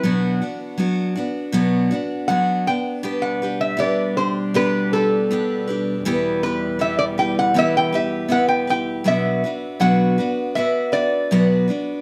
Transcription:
<<
  \new Staff \with { instrumentName = "Resonator guitar played with a steel bar" } { \time 4/4 \key b \phrygian \tempo 4 = 80 << { b'4~ b'16 r4. r16 fis''8 g''8~ | g''16 fis''8 e''16 d''8 c''8 b'8 a'4. | r8 b'8 e''16 d''16 g''16 fis''16 e''16 g''16 e''8 fis''16 g''8. | r1 | } \\ { r1 | r1 | r2. r8 g''8 | e''4 fis''4 e''8 d''4. | } >> }
  \new Staff \with { instrumentName = "Steel-string acoustic guitar" } { \time 4/4 \key b \phrygian <b, fis b d' fis'>8 <b d' fis'>8 <fis b d' fis'>8 <b d' fis'>8 <b, fis b d' fis'>8 <b d' fis'>8 <fis b d' fis'>8 <b d'>8 | <b d' g' b'>8 <d' g' b'>8 <b d' g' b'>8 <d' g'>8 <b d' g' b'>8 <d' g' b'>8 <b d' g' b'>8 <d' g' b'>8 | <e b e' g' b'>8 <e' g' b'>8 <b e' g' b'>8 <e' g' b'>8 <e b e' g' b'>8 <e' g' b'>8 <b e' g' b'>8 <e' g' b'>8 | <b, fis b d' fis' b'>8 <b d' fis' b'>8 <b, fis b d' fis' b'>8 <b d' fis' b'>8 <b d' fis' b'>8 <b d' fis' b'>8 <b, fis b d' fis' b'>8 <b d' fis' b'>8 | }
  \new Staff \with { instrumentName = "String section" } { \clef bass \time 4/4 \key b \phrygian r1 | <b, g d'>1 | <e, g>1 | r1 | }
>>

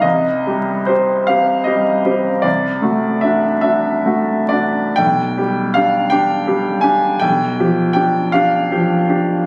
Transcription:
\new Staff \with { instrumentName = "Grand piano" } { \time 6/8 \key g \phrygian \tempo 4. = 52 << { ees''4 c''8 f''8 ees''4 | d''4 e''8 e''4 d''8 | g''4 f''8 g''4 aes''8 | g''4 g''8 f''8 r4 | } \\ { c,8 <g g'>8 <c' g'>8 <c' g'>8 <g g'>8 <c' g'>8 | c,8 <a fis'>8 <d' fis'>8 <d' fis'>8 <a fis'>8 <d' fis'>8 | b,,8 <g g'>8 <d' g'>8 <d' g'>8 <g g'>8 <d' g'>8 | b,,8 <f g'>8 <d' g'>8 <d' g'>8 <f g'>8 <d' g'>8 | } >> }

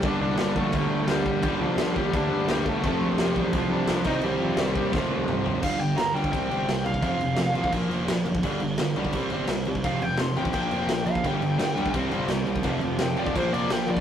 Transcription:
<<
  \new Staff \with { instrumentName = "Lead electric guitar" } { \time 4/4 \key g \minor \tempo 4 = 171 <d' d''>8 <d' d''>8 <d' d''>8 <a a'>4. <g g'>4 | <g g'>8 <f f'>4 <g g'>8 <d' d''>4 <g g'>8 <a a'>8~ | <a a'>4 <g g'>4 <f f'>8 <d' d''>4 <ees' ees''>8 | <g g'>2 r2 |
f''8 g''8 bes''8 g''8 g''4. f''8 | f''2 r2 | r1 | f''8 g''8 c'''8 g''8 g''4. f''8 |
g''2 r2 | r4 g''8 d''8 c''8 d''8 g''8 d''8 | }
  \new Staff \with { instrumentName = "Distorted electric guitar" } { \clef bass \time 4/4 \key g \minor <g, d g bes d'>1 | <g, d g bes d'>1 | <f a c' f'>2.~ <f a c' f'>8 <c ees g c' g'>8~ | <c ees g c' g'>2 <f a c' f'>2 |
<g, d g>8 <g, d>8 <g, d>8 <g, d g>8 <c g c'>8 <c g c'>8 <c g>8 <c g>8 | <f, c f>8 <f, c>8 <f, c>8 <f, c f>8 <bes, f bes>8 <bes, f bes>8 <bes, f>8 <bes, f>8 | <g, d g>8 <g, d>8 <g, d>8 <g, d g>8 <c g c'>8 <c g c'>8 <c g>8 <c g>8 | <f, c f>8 <f, c>8 <f, c>8 <f, c f>8 <bes, f bes>8 <bes, f bes>8 <bes, f>8 <bes, f>8 |
<g, d g>8 <g, d>8 <g, d>8 <g, d g>8 <c g c'>8 <c g c'>8 <c g>8 <c g>8 | <f, c f>8 <f, c>8 <f, c>8 <f, c f>8 <bes, f bes>8 <bes, f bes>8 <bes, f>8 <bes, f>8 | }
  \new Staff \with { instrumentName = "Overdriven electric guitar" } { \clef bass \time 4/4 \key g \minor <g, d g>4. <g, d g>4. <g, d g>4 | <g, d g>4. <g, d g>4. <g, d g>4 | <f, c f>4. <f, c f>4. <f, c f>8 <c g c'>8~ | <c g c'>4 <c g c'>4 <f, c f>4. <f, c f>8 |
<g, d g>8 <g, d>8 <g, d>8 <g, d g>8 <c g c'>8 <c g c'>8 <c g>8 <c g>8 | <f, c f>8 <f, c>8 <f, c>8 <f, c f>8 <bes, f bes>8 <bes, f bes>8 <bes, f>8 <bes, f>8 | <g, d g>8 <g, d>8 <g, d>8 <g, d g>8 <c g c'>8 <c g c'>8 <c g>8 <c g>8 | <f, c f>8 <f, c>8 <f, c>8 <f, c f>8 <bes, f bes>8 <bes, f bes>8 <bes, f>8 <bes, f>8 |
<g, d g>8 <g, d>8 <g, d>8 <g, d g>8 <c g c'>8 <c g c'>8 <c g>8 <c g>8 | <f, c f>8 <f, c>8 <f, c>8 <f, c f>8 <bes, f bes>8 <bes, f bes>8 <bes, f>8 <bes, f>8 | }
  \new Staff \with { instrumentName = "Overdriven electric guitar" } { \clef bass \time 4/4 \key g \minor <g, d g>2 <g, d g>2 | <g, d g>2 <g, d g>2 | <f, c f>2 <f, c f>4. <c g c'>8~ | <c g c'>4. <c g c'>8 <f, c f>2 |
r1 | r1 | r1 | r1 |
<g, d g>4. <g, d g>8 <c g c'>4. <c g c'>8 | <f, c f>4. <f, c f>8 <bes, f bes>4. <bes, f bes>8 | }
  \new Staff \with { instrumentName = "Picked electric bass" } { \clef bass \time 4/4 \key g \minor g,,8 c,8 g,,8 bes,,8 d,8 d,8 d,8 g,,8 | g,,8 c,8 g,,8 bes,,8 d,8 d,8 d,8 g,,8 | f,,8 bes,,8 f,,8 a,,8 c,8 c,8 c,8 c,8 | c,8 f,8 c,8 ees,8 f,,8 c,8 c,8 f,,8 |
g,,8 g,,8 g,,8 g,,8 c,8 g,,8 c,8 c,8 | f,,8 f,,8 f,,8 a,,8 bes,,8 f,,8 bes,,8 fis,,8 | g,,8 g,,8 g,,8 b,,8 c,8 g,,8 c,8 c,8 | f,,8 f,,8 f,,8 a,,8 bes,,8 f,,8 bes,,8 bes,,8 |
g,,8 g,,8 g,,8 d,8 c,8 g,,8 c,8 c,8 | f,,8 f,,8 f,,8 f,,8 bes,,8 f,,8 bes,,8 bes,,8 | }
  \new DrumStaff \with { instrumentName = "Drums" } \drummode { \time 4/4 <cymc bd>4 <cymc sn>8 bd8 <cymc bd>4 <cymc sn>8 bd8 | <cymc bd>4 <cymc sn>8 bd8 <cymc bd>4 <cymc sn>8 bd8 | <cymc bd>4 <cymc sn>8 bd8 <cymc bd>4 <cymc sn>8 <cymc bd>8 | cymc4 <cymc sn>8 bd8 <bd sn>4 toml8 tomfh8 |
<cymc bd>8 cymc8 <cymc sn>8 cymc16 bd16 <cymc bd>8 cymc8 <cymc sn>8 cymc16 bd16 | <cymc bd>8 cymc8 <cymc sn>8 cymc16 bd16 <cymc bd>8 cymc8 <cymc sn>8 cymc16 bd16 | <cymc bd>8 cymc8 <cymc sn>8 cymc16 bd16 <cymc bd>8 cymc8 <cymc sn>8 cymc16 bd16 | <cymc bd>8 cymc8 <cymc sn>8 cymc16 bd16 <cymc bd>8 cymc8 <cymc sn>8 cymc16 bd16 |
<cymc bd>8 cymc8 <cymc sn>8 cymc16 bd16 <cymc bd>8 cymc8 <cymc sn>8 cymc16 bd16 | <cymc bd>8 cymc8 <cymc sn>8 cymc16 bd16 <cymc bd>8 cymc8 <cymc sn>8 cymc16 bd16 | }
>>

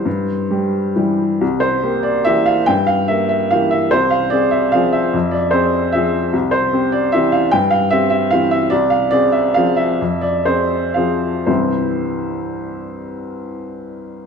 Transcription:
\new Staff \with { instrumentName = "Upright piano" } { \time 3/4 \key c \major \tempo 4 = 142 << { c''2 r4 | r8 c''4 d''8 e''8 f''8 | g''8 f''8 e''8 e''8 f''8 e''8 | c''8 f''8 d''8 e''8 f''8 e''8~ |
e''8 d''8 c''4 e''4 | r8 c''4 d''8 e''8 f''8 | g''8 f''8 e''8 e''8 f''8 e''8 | d''8 f''8 d''8 e''8 f''8 e''8~ |
e''8 d''8 c''4 f''4 | <c, g, e g c' e' c''>2.~ | <c, g, e g c' e' c''>2. | } \\ { g,4 <g g'>4 <e g g'>4 | c,4 <bes g'>4 <e bes g'>4 | g,4 <bes g'>4 <e bes g'>4 | c,4 <c' aes'>4 <f c' aes'>4 |
f,4 <c' aes'>4 <f c' aes'>4 | c,4 <c' g'>4 <e c' g'>4 | g,4 <c' g'>4 <e c' g'>4 | c,4 <c' aes'>4 <f c' aes'>4 |
f,4 <c' aes'>4 <f c' aes'>4 | r2. | r2. | } >> }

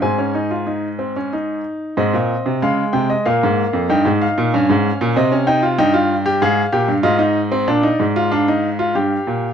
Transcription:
<<
  \new Staff \with { instrumentName = "Grand piano" } { \time 3/4 \key aes \major \tempo 4 = 94 << { aes''2~ aes''8 r8 | ees''4 f''8 g''16 ees''16 f''4 | g''8 f''4. ees''8 g''8 | g''4 f''4 ees''4 |
d''4 f''2 | } \\ { c'16 des'16 ees'16 f'16 ees'8 c'16 des'16 ees'4 | c'4 aes4 bes4 | ees'4 des'4 c'16 des'16 ees'16 f'16 | ees'16 f'8 g'16 aes'8 g'8 f'16 ees'8 c'16 |
d'16 ees'8 f'16 d'16 ees'8 f'16 g'4 | } >> }
  \new Staff \with { instrumentName = "Grand piano" } { \clef bass \time 3/4 \key aes \major aes,2~ aes,8 r8 | aes,16 bes,8 c16 des8 c8 bes,16 aes,8 f,16 | g,16 aes,8 bes,16 g,16 aes,8 bes,16 c4 | g,4 aes,8 bes,16 g,16 aes,4 |
bes,8 aes,4. g,8 bes,8 | }
>>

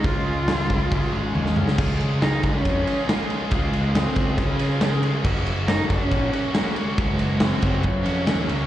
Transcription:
<<
  \new Staff \with { instrumentName = "Clean electric guitar" } { \time 4/4 \key des \major \tempo 4 = 138 <des aes des' aes'>8 aes8 f'8 des'8 aes'8 des'8 aes8 des'8 | r1 | r1 | r1 |
r1 | }
  \new Staff \with { instrumentName = "Distorted electric guitar" } { \time 4/4 \key des \major <des aes des'>8 <des aes des'>8 <des aes des'>8 <des aes des'>8 <des aes des'>8 <des aes des'>8 <des aes des'>8 <des aes des'>8 | <des aes des' f' aes'>4 <aes des' f' aes'>4. <des' f' aes'>8 <des aes des' f' aes'>8 <des' f' aes'>8 | <des aes des' f' aes'>4 <aes des' f' aes'>4. <des' f' aes'>8 <des aes des' f' aes'>8 <des' f' aes'>8 | <ges, des ges bes des' ges'>4 <ges bes des' ges'>4. <ges bes des' ges'>8 <ges, des ges bes des' ges'>8 <ges bes des' ges'>8 |
<ges, des ges bes des' ges'>4 <ges bes des' ges'>4. <ges bes des' ges'>8 <ges, des ges bes des' ges'>8 <ges bes des' ges'>8 | }
  \new Staff \with { instrumentName = "Cello" } { \time 4/4 \key des \major f'2.~ f'8 r8 | r4 ees'8 des'4. bes8 aes8 | aes4 c'4 des'4. r8 | r4 ees'8 des'4. bes8 aes8 |
aes4 c'4 des'4. r8 | }
  \new Staff \with { instrumentName = "Picked electric bass" } { \clef bass \time 4/4 \key des \major des,2 des,8 aes,,8 ees,8 des,8 | des,4. des,8 f,8 r4. | des,4. des,8 des2 | ges,,4. ges,,8 bes,,8 r4. |
ges,,4. ges,,8 ges,8 f,8 ees,8 des,8 | }
  \new DrumStaff \with { instrumentName = "Drums" } \drummode { \time 4/4 <hho bd>4 <hho sn>8 bd8 <hho bd>4 tommh16 sn16 toml16 sn16 | <cymc bd>8 cymr8 <cymr sn>8 <bd cymr>8 <bd cymr>8 cymr8 <cymr sn>8 cymr8 | <bd cymr>8 cymr8 <cymr sn>8 <bd cymr>8 <bd cymr>8 cymr8 <cymr sn>8 cymr8 | <cymc bd>8 cymr8 <cymr sn>8 <bd cymr>8 <bd cymr>8 cymr8 <cymr sn>8 cymr8 |
<bd cymr>8 cymr8 <cymr sn>8 <bd cymr>8 <bd cymr>8 cymr8 <cymr sn>8 cymr8 | }
>>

